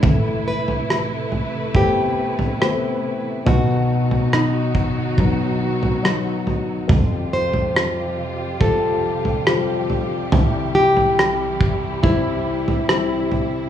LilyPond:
<<
  \new Staff \with { instrumentName = "Nylon-string guitar" } { \time 4/4 \key b \phrygian \tempo 4 = 70 r8 b'4. g'2 | fis'4 dis'2 r4 | r8 c''4. a'2 | r8 g'4. e'2 | }
  \new Staff \with { instrumentName = "Grand piano" } { \time 4/4 \key b \phrygian a,2 <a b c'>4 <a b c'>4 | b,2 <fis b dis'>4 <fis b dis'>4 | f,2 <g c' f'>4 <g c' f'>4 | c,2 <g c' e'>4 <g c' e'>4 | }
  \new Staff \with { instrumentName = "String section" } { \clef bass \time 4/4 \key b \phrygian << { <c a e'>1 | <b, fis fis'>1 | <c g g'>1~ | <c g g'>1 | } \\ { <e b'>1 | <dis dis'>1 | <f f'>1 | <e e'>1 | } >> }
  \new DrumStaff \with { instrumentName = "Drums" } \drummode { \time 4/4 <bd tomfh>8. tomfh16 ss8 tomfh8 <bd tomfh>8. tomfh16 ss4 | tomfh8. tomfh16 ss8 bd8 <bd tomfh>8. tomfh16 ss8 tomfh8 | <bd tomfh>8. tomfh16 ss4 <bd tomfh>8. tomfh16 ss8 tomfh8 | tomfh8. tomfh16 ss8 bd8 <bd tomfh>8. tomfh16 ss8 tomfh8 | }
>>